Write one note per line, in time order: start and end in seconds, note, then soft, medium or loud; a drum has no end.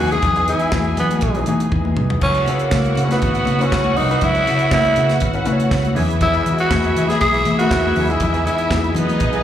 0.00 0.18 D#2 medium
0.00 2.18 B2 medium
0.00 0.12 E3 medium
0.00 2.20 E3 medium
0.00 2.18 G#3 medium
0.00 0.12 B3 medium
0.00 0.13 D#4 medium
0.00 0.13 F#4 medium
0.00 0.13 G#4 loud
0.00 1.93 G#4 medium
0.00 2.24 B4 loud
0.00 1.93 G#5 medium
0.00 low conga medium
0.12 0.29 E3 medium
0.12 0.30 B3 medium
0.12 0.30 D#4 medium
0.12 0.48 G#4 loud
0.12 0.30 G#4 loud
0.12 closed hi-hat soft
0.22 0.49 E2 loud
0.22 kick loud
0.22 closed hi-hat medium
0.22 muted conga soft
0.22 low conga loud
0.35 0.63 E3 medium
0.35 0.63 B3 medium
0.35 0.64 D#4 medium
0.35 0.64 G#4 medium
0.35 closed hi-hat soft
0.48 0.68 E3 loud
0.48 0.95 E4 medium
0.48 closed hi-hat medium
0.59 closed hi-hat soft
0.72 0.93 E2 loud
0.72 1.18 E3 medium
0.72 1.19 B3 medium
0.72 1.19 D#4 medium
0.72 0.79 F#4 medium
0.72 kick loud
0.72 snare loud
0.72 clap medium
0.72 muted conga soft
0.72 high conga medium
0.80 1.22 G#4 medium
0.97 1.24 E3 loud
0.97 1.45 B3 medium
0.97 closed hi-hat medium
0.97 low conga medium
1.11 closed hi-hat medium
1.11 high conga medium
1.21 1.42 B1 loud
1.21 kick loud
1.21 closed hi-hat medium
1.21 muted conga soft
1.35 1.44 E3 medium
1.35 1.44 B3 medium
1.35 1.45 D#4 medium
1.35 1.45 G#4 medium
1.35 closed hi-hat soft
1.46 2.21 E3 medium
1.46 1.68 E3 medium
1.46 2.21 B3 medium
1.46 2.21 D#4 medium
1.46 2.21 G#4 medium
1.46 closed hi-hat medium
1.46 high conga medium
1.60 closed hi-hat soft
1.60 high conga medium
1.72 1.98 E2 medium
1.72 kick loud
1.72 high tom medium
1.72 muted conga soft
1.85 high conga medium
1.97 2.18 C2 loud
1.97 mid tom medium
1.97 muted conga soft
1.97 low conga medium
2.10 floor tom medium
2.21 2.42 C#2 loud
2.21 5.93 B2 medium
2.21 5.92 C#3 medium
2.21 2.55 C#4 loud
2.21 5.93 E4 medium
2.21 5.92 F#4 medium
2.21 5.92 F#5 medium
2.21 kick loud
2.21 crash medium
2.21 low conga medium
2.35 closed hi-hat soft
2.46 2.93 C#3 medium
2.46 2.67 C#3 loud
2.46 2.94 C#4 medium
2.46 2.94 E4 medium
2.46 2.94 C#5 medium
2.46 closed hi-hat medium
2.46 muted conga soft
2.53 2.62 B3 medium
2.59 3.05 A#3 medium
2.59 closed hi-hat soft
2.71 2.92 C#2 medium
2.71 kick loud
2.71 snare loud
2.71 clap medium
2.71 high conga medium
2.85 closed hi-hat soft
2.95 3.17 C#3 loud
2.95 closed hi-hat medium
2.95 muted conga soft
3.04 3.13 C#4 medium
3.09 3.46 C#3 medium
3.09 3.63 B3 medium
3.09 3.46 C#4 medium
3.09 3.16 D#4 medium
3.09 3.47 B4 medium
3.09 snare soft
3.09 closed hi-hat soft
3.09 high conga medium
3.16 3.49 E4 medium
3.22 3.42 G#1 medium
3.22 kick loud
3.22 closed hi-hat medium
3.35 closed hi-hat soft
3.45 3.67 C#3 medium
3.45 closed hi-hat medium
3.45 muted conga soft
3.45 high conga medium
3.59 3.88 C#3 medium
3.59 3.88 C#4 medium
3.59 3.99 C#4 medium
3.59 3.88 E4 medium
3.59 3.88 B4 medium
3.59 closed hi-hat soft
3.59 high conga medium
3.70 3.92 C#2 loud
3.70 kick loud
3.70 snare loud
3.70 clap medium
3.70 muted conga soft
3.84 high conga medium
3.96 4.17 C2 medium
3.96 4.06 C#3 medium
3.96 4.06 C#4 medium
3.96 4.25 D#4 loud
3.96 4.07 E4 medium
3.96 4.07 A#4 medium
3.96 open hi-hat medium
3.96 muted conga soft
3.96 low conga medium
4.09 4.28 C#3 medium
4.09 4.28 C#4 medium
4.09 4.28 E4 medium
4.09 4.28 B4 loud
4.09 closed hi-hat soft
4.21 4.42 C#2 loud
4.21 4.73 E4 loud
4.21 kick loud
4.21 closed hi-hat medium
4.21 muted conga soft
4.21 low conga loud
4.34 4.62 C#3 medium
4.34 4.62 C#4 medium
4.34 4.62 E4 medium
4.34 4.62 B4 medium
4.34 closed hi-hat soft
4.47 4.67 C#3 loud
4.47 closed hi-hat medium
4.59 closed hi-hat soft
4.71 4.92 C#2 medium
4.71 5.17 C#3 medium
4.71 5.18 C#4 medium
4.71 5.18 E4 medium
4.71 5.19 E4 loud
4.71 5.18 A#4 medium
4.71 kick loud
4.71 snare loud
4.71 clap loud
4.71 muted conga soft
4.71 high conga medium
4.84 closed hi-hat soft
4.96 5.17 C#3 loud
4.96 closed hi-hat medium
5.09 snare soft
5.09 closed hi-hat soft
5.09 high conga medium
5.20 5.42 G#1 loud
5.20 kick loud
5.20 closed hi-hat loud
5.20 muted conga soft
5.33 5.43 C#3 medium
5.33 5.43 C#4 medium
5.33 5.43 E4 medium
5.33 5.44 B4 medium
5.33 closed hi-hat soft
5.45 5.96 C#3 loud
5.45 5.66 C#3 medium
5.45 5.96 C#4 loud
5.45 5.94 E4 medium
5.45 5.53 B4 medium
5.45 closed hi-hat medium
5.45 muted conga soft
5.45 high conga medium
5.52 5.99 C#5 loud
5.60 closed hi-hat soft
5.60 high conga medium
5.71 5.91 C#2 loud
5.71 kick loud
5.71 snare medium
5.71 clap medium
5.71 muted conga soft
5.83 closed hi-hat soft
5.83 high conga medium
5.95 6.36 E2 medium
5.95 6.36 E3 loud
5.95 9.43 E3 medium
5.95 9.43 G#3 medium
5.95 6.36 B3 medium
5.95 6.37 E4 medium
5.95 8.91 E4 medium
5.95 6.37 G#4 loud
5.95 9.43 G#4 medium
5.95 8.92 E5 medium
5.95 open hi-hat medium
5.95 muted conga soft
5.95 low conga medium
6.11 closed hi-hat soft
6.21 6.57 E4 loud
6.21 kick loud
6.21 closed hi-hat medium
6.21 muted conga soft
6.21 low conga loud
6.33 closed hi-hat soft
6.45 6.92 E3 medium
6.45 6.66 E3 loud
6.45 6.92 B3 medium
6.45 6.53 E4 medium
6.45 closed hi-hat medium
6.52 6.95 F#4 medium
6.58 7.11 F#4 medium
6.58 closed hi-hat soft
6.71 6.91 E2 medium
6.71 kick loud
6.71 snare loud
6.71 clap medium
6.71 muted conga soft
6.71 high conga medium
6.84 closed hi-hat soft
6.96 7.16 E3 loud
6.96 closed hi-hat medium
7.08 7.45 E3 medium
7.08 7.45 B3 medium
7.08 7.45 E4 medium
7.08 7.20 G#4 loud
7.08 7.46 G#4 medium
7.08 snare soft
7.08 closed hi-hat soft
7.08 high conga medium
7.21 7.41 B1 loud
7.21 7.56 G#4 loud
7.21 kick loud
7.21 closed hi-hat medium
7.34 closed hi-hat soft
7.45 7.66 E3 loud
7.45 closed hi-hat medium
7.45 muted conga soft
7.45 high conga medium
7.58 7.86 E3 medium
7.58 7.86 B3 medium
7.58 7.86 D#4 medium
7.58 8.11 F#4 loud
7.58 7.87 A#4 medium
7.58 closed hi-hat soft
7.58 high conga medium
7.71 7.91 E2 loud
7.71 kick loud
7.71 snare loud
7.71 clap medium
7.84 high conga medium
7.95 8.16 D#2 medium
7.95 8.05 E3 medium
7.95 8.06 B3 medium
7.95 8.06 D#4 medium
7.95 8.06 G#4 medium
7.95 open hi-hat medium
7.95 low conga medium
8.08 8.27 E3 medium
8.08 8.27 B3 medium
8.08 8.27 D#4 medium
8.08 8.46 E4 medium
8.08 8.27 G#4 loud
8.08 closed hi-hat soft
8.20 8.47 E2 loud
8.20 kick loud
8.20 closed hi-hat medium
8.20 muted conga soft
8.20 low conga loud
8.32 8.61 E3 medium
8.32 8.61 B3 medium
8.32 8.61 D#4 medium
8.32 8.61 G#4 medium
8.32 closed hi-hat soft
8.46 8.65 E3 medium
8.46 8.99 E4 loud
8.46 closed hi-hat medium
8.46 muted conga soft
8.58 closed hi-hat soft
8.70 8.90 E2 loud
8.70 9.16 E3 medium
8.70 9.16 B3 medium
8.70 9.17 D#4 medium
8.70 8.78 F#4 medium
8.70 kick loud
8.70 snare loud
8.70 clap medium
8.70 high conga medium
8.77 9.20 G#4 medium
8.84 closed hi-hat soft
8.94 9.22 E3 loud
8.94 9.43 B3 medium
8.94 9.43 D#4 medium
8.94 9.43 D#5 medium
8.94 closed hi-hat medium
8.94 low conga medium
9.09 closed hi-hat soft
9.09 high conga medium
9.20 9.41 B1 loud
9.20 kick loud
9.20 closed hi-hat medium
9.20 muted conga soft
9.32 9.42 E3 medium
9.32 9.42 B3 medium
9.32 9.42 D#4 medium
9.32 9.42 G#4 medium
9.32 closed hi-hat soft